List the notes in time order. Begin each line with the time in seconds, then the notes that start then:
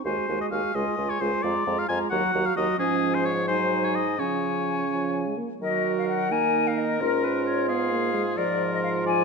0.04 D#2 G#3 F#4 C5 G#5
0.28 D#2 G#3 F#4 G#5
0.41 D#5
0.51 D#2 G#3 F#4 F5 G#5
0.74 C#2 G#3 F4 D#5 G#5
0.97 C#2 G#3 F4 G#5
1.10 C#5
1.20 C#2 G#3 F4 C5 G#5
1.43 F2 G#3 F4 D5 A#5
1.66 F2 G#3 F4 A#5
1.79 F5
1.88 F2 G#3 F4 G#5 A#5
2.11 D#2 F#3 F#4 F#5 A#5
2.33 D#2 F#3 F#4 A#5
2.46 F5
2.56 D#2 F#3 F#4 D#5 A#5
2.79 G#2 F3 C#4 G#4 G#5
3.14 C5
3.26 C#5
3.48 F#3 D#4 C5 G#5
3.85 C#5
3.95 D#5
4.19 C#3 F3 C#4 C#5 G#5
4.90 F3
5.26 G#3
5.37 A#3
5.61 D#3 F#3 F#4 A#4 D#5
5.98 F5
6.09 F#5
6.31 A#3 D#4 A#4 G#5
6.67 F5
6.78 D#5
7.00 G#2 C#4 F4 A#4
7.24 B4
7.46 C#5
7.68 B3 G#4 F5
7.91 A#3
8.14 G#3
8.37 G#2 F3 F4 A#4 D5
8.73 D#5
8.83 F5
9.05 F3 D5 G#5